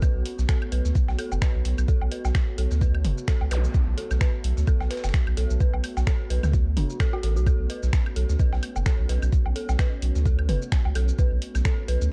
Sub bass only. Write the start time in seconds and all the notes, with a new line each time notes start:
0.15 B1
0.39 B1
0.72 B1
0.85 D2
1.08 B1
1.32 F#1
1.55 B1
1.65 B1
1.78 B1
2.01 B1
2.25 B1
2.58 B1
2.71 D2
3.05 F#1
3.41 C#2
3.51 B1
3.87 B1
4.11 B1
4.44 B1
4.57 D2
4.81 B1
5.04 F#1
5.27 B1
5.37 B1
5.50 B1
5.74 B1
5.97 B1
6.30 B1
6.43 D2
6.77 F#1
7.23 A1
7.36 B1
7.60 B1
7.83 B1
8.16 B1
8.29 D2
8.53 B1
8.76 F#1
8.99 B1
9.09 B1
9.22 B1
9.46 B1
9.69 B1
10.02 B1
10.15 D2
10.49 F#1
10.85 C#2
10.95 B1
11.32 B1
11.55 B1
11.88 B1
12.01 D2